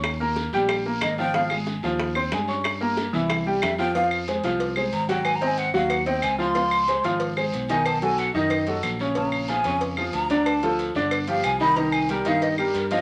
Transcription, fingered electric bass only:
X:1
M:4/4
L:1/8
Q:1/4=184
K:Ab
V:1 name="Fingered electric bass" clef=bass
E,,3 B,,,3 A,,,2- | A,,,3 E,,3 G,,2- | G,,3 C,,3 F,,2- | [K:Fm] F,,3 C,,3 A,,,2- |
A,,,3 E,,3 D,,2- | D,,3 A,,,3 =B,,,2- | =B,,,3 ^F,,3 _B,,,2- | B,,,3 F,,3 =D,,2- |
=D,,3 G,,,3 C,,2- | C,,3 G,,3 G,,2 |]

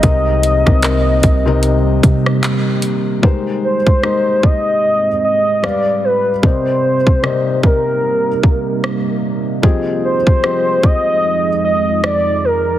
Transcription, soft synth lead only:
X:1
M:4/4
L:1/8
Q:"Swing 16ths" 1/4=75
K:Cm
V:1 name="Soft synth lead"
e6- e z | z c2 e2 e d =B | c3 B4 z | z c2 e2 e d B |]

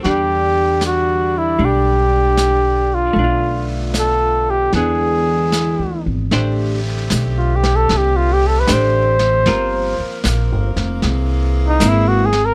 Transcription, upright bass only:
X:1
M:4/4
L:1/8
Q:"Swing" 1/4=77
K:Em
V:1 name="Upright bass" clef=bass
E,,4 B,,,4 | B,,,4 E,,2- (3E,, D,, ^G,,, | [K:Am] A,,,2 B,,,2 C,,2 A,,,2 | G,,, z (3_B,,, G,,, F,,, C,,2 ^G,,,2 |]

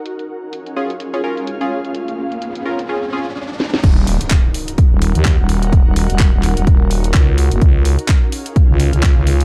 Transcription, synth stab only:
X:1
M:4/4
L:1/16
Q:"Swing 16ths" 1/4=127
K:Ebm
V:1 name="Synth stab"
z6 [DFA] z2 [DFA] [DFB]2 z [DFA]2 z | z6 [DFB] z [DFA]2 [DFA] z4 z | z16 | z16 |
z16 |]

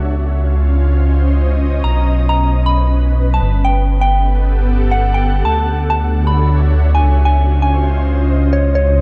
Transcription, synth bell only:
X:1
M:4/4
L:1/16
Q:"Swing 16ths" 1/4=133
K:C#dor
V:1 name="Synth bell"
z16 | a2 z2 a2 z b2 z4 =a2 z | =g2 z g2 z6 f z g2 z | =a2 z2 a2 z b2 z4 g2 z |
g2 z g2 z6 c z c2 z |]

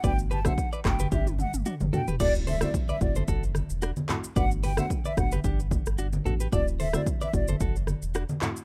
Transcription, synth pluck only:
X:1
M:4/4
L:1/16
Q:"Swing 16ths" 1/4=111
K:G
V:1 name="Synth pluck"
[A,B,DF]3 [A,B,DF] z2 [A,B,DF] z6 z [A,B,DF] z | [A,CEF]3 [A,CEF] z2 [A,CEF] z6 z [A,CEF] z | [A,B,DF]3 [A,B,DF] z2 [A,B,DF] z6 z [A,B,DF] z | [A,CEF]3 [A,CEF] z2 [A,CEF] z6 z [A,CEF] z |]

